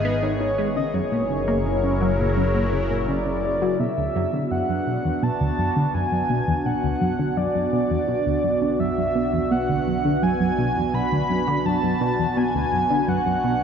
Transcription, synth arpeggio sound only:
0.05 B3
0.23 D#3
0.41 D#3
0.58 G#3
0.76 C#3
0.94 F#2
1.12 A#2
1.30 C#3
1.48 A#3
1.66 C#3
1.84 C#3
2.01 F#3
2.19 A#2
2.37 F#2
2.55 A#2
2.73 C#3
2.91 A#2
3.08 C#3
3.26 C#3
3.44 C#3
3.62 F#3
3.80 B2
3.98 D2
4.15 F#2
4.33 D3
4.51 F#2
4.69 F#2
4.87 B2
5.05 E2
5.23 B2
5.41 D2
5.58 F#2
5.76 D3
5.94 F#2
6.12 F#2
6.30 B2
6.48 E2
6.66 B2
6.83 D2
7.01 F#2
7.19 D3
7.37 F#2
7.55 F#2
7.73 B2
7.91 E2
8.08 B2
8.26 D2
8.44 F#2
8.62 D3
8.80 F#2
8.98 F#2
9.15 B2
9.33 E2
9.51 B2
9.69 D2
9.87 F#2
10.05 D3
10.23 F#2
10.40 F#2
10.58 B2
10.76 E2
10.94 B2
11.12 D2
11.30 F#2
11.48 D3
11.66 F#2
11.83 F#2
12.01 B2
12.19 E2
12.37 B2
12.55 D2
12.73 F#2
12.91 D3
13.08 F#2
13.26 F#2
13.44 B2

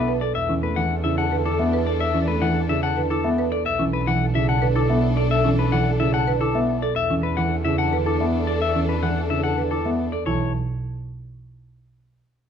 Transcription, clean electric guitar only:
Already playing: B4
0.21 D5
0.35 E5
0.63 B4
0.76 F#5
1.04 E5
1.18 F#5
1.46 A4
1.87 D5
2.00 E5
2.28 B4
2.42 F#5
2.69 E5
2.83 F#5
3.10 A4
3.52 D5
3.66 E5
3.93 B4
4.07 F#5
4.35 E5
4.49 F#5
4.76 A4
5.17 D5
5.31 E5
5.59 B4
5.72 F#5
6.00 E5
6.14 F#5
6.41 A4
6.82 D5
6.96 E5
7.23 B4
7.37 F#5
7.65 E5
7.78 F#5
8.06 A4
8.47 D5
8.62 E5
8.89 B4
9.03 F#5
9.30 E5
9.44 F#5
9.71 A4
10.12 D5
10.26 C#5

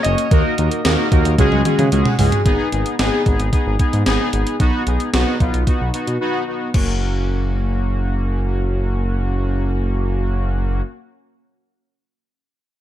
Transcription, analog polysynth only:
0.05 A#3 C#4 F#4 C#5
0.31 A#3 D#4 F#4 A#4
0.58 A#3 D#4 F#4 A#4
0.85 A#3 D#4 F#4 A#4
1.12 A#3 D#4 F#4 A#4
1.38 G#3 C#4 F#4 G#4
1.65 G#3 C#4 F#4 G#4
1.92 G#3 C#4 F#4 G#4
2.19 G#3 C#4 F#4 G#4
2.46 B3 D#4 G#4
2.72 B3 D#4 G#4
2.99 B3 D#4 G#4
3.26 B3 D#4 G#4
3.53 B3 D#4 G#4
3.80 B3 D#4 G#4
4.06 B3 D#4 G#4
4.33 B3 D#4 G#4
4.60 B3 D#4 F#4
4.87 B3 D#4 G#4
5.14 B3 D#4 F#4
5.40 B3 D#4 F4
5.67 B3 D#4 F#4
5.94 B3 D#4 F#4
6.21 B3 D#4 F#4
6.47 B3 D#4 F#4
6.74 A#3 C#4 F#4

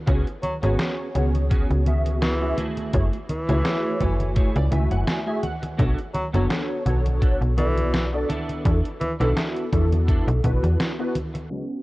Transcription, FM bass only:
0.08 C#2
0.63 G#1
1.15 C#2
1.70 C#2
2.93 F#1
3.49 C#2
4.00 F#1
4.56 C#2
4.72 C#2
4.91 F#1
5.79 B1
6.34 F#1
6.86 B1
7.41 B1
8.65 E2
9.20 B1
9.72 E2
10.27 B1
10.44 B1
10.63 E2

